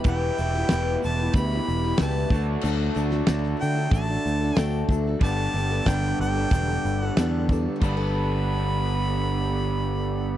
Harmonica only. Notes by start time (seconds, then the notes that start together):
0.09 G5
1.05 A5
1.35 B5
2.02 A5
3.61 G5
3.93 A5
4.59 G5
5.23 A5
5.89 G5
6.21 G5
7.03 F#5
7.83 B5